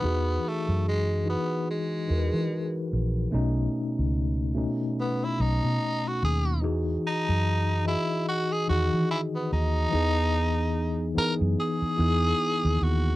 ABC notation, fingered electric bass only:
X:1
M:4/4
L:1/16
Q:"Swing 16ths" 1/4=73
K:E
V:1 name="Fingered electric bass" clef=bass
E,,2 z F,,4 z3 E,, E, z2 ^A,,,2 | B,,,2 z C,,4 z3 B,,, B,, z2 D,,2 | E,,2 z F,,4 z3 E,, E, z2 D,,2 | E,,6 z F,, z2 E,,2 z D,, D,,2 |]